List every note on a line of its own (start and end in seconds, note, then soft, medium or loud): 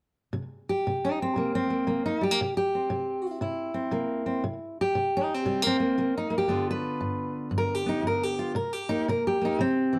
0.33 0.81 C3 medium
0.69 1.54 G4 medium
0.87 1.33 C3 medium
1.05 1.20 D#4 medium
1.22 1.54 C4 medium
1.36 1.84 C3 medium
1.36 1.70 A#3 soft
1.55 2.05 C4 medium
1.70 1.87 A#3 soft
1.87 2.35 C3 medium
1.87 2.21 A#3 soft
2.06 2.22 D#4 medium
2.21 2.31 G3 soft
2.21 2.56 G4 medium
2.31 2.39 A#3 soft
2.41 2.88 C3 medium
2.57 3.41 G4 medium
2.75 3.73 C4 soft
2.90 3.38 C3 medium
3.41 3.89 C3 medium
3.41 4.79 E4 soft
3.74 4.25 C4 soft
3.91 4.40 C3 medium
3.91 4.41 A#3 soft
4.26 4.42 C4 soft
4.44 4.92 C3 medium
4.81 5.65 G4 medium
4.95 5.43 C3 medium
5.17 5.34 D#4 medium
5.34 5.66 C4 medium
5.46 5.94 C3 medium
5.46 5.62 G3 soft
5.62 5.79 A#3 soft
5.67 6.17 C4 medium
5.80 5.97 A#3 soft
5.98 6.46 C3 medium
5.98 6.29 A#3 soft
6.18 6.34 D#4 medium
6.30 6.47 A#3 soft
6.38 6.70 G4 medium
6.48 6.97 G2 medium
6.48 8.55 D3 soft
6.48 7.85 B3 soft
6.48 7.87 F4 soft
6.71 7.54 B4 medium
7.01 7.49 G2 medium
7.51 8.00 G2 medium
7.58 7.75 A#4 medium
7.75 8.06 G4 medium
7.86 8.53 B3 soft
7.86 8.05 D#4 medium
8.02 8.51 G2 medium
8.07 8.23 A#4 medium
8.23 8.55 G4 medium
8.39 8.54 F4 soft
8.55 9.03 C3 medium
8.55 8.73 A#4 medium
8.73 9.07 G4 medium
8.89 9.41 A#3 soft
8.89 9.07 D#4 medium
9.08 9.56 C3 medium
9.08 9.25 A#4 medium
9.27 9.94 G4 medium
9.42 9.60 A#3 soft
9.42 9.60 D#4 medium
9.59 9.99 C3 medium
9.59 9.99 C4 medium
9.93 9.99 E3 soft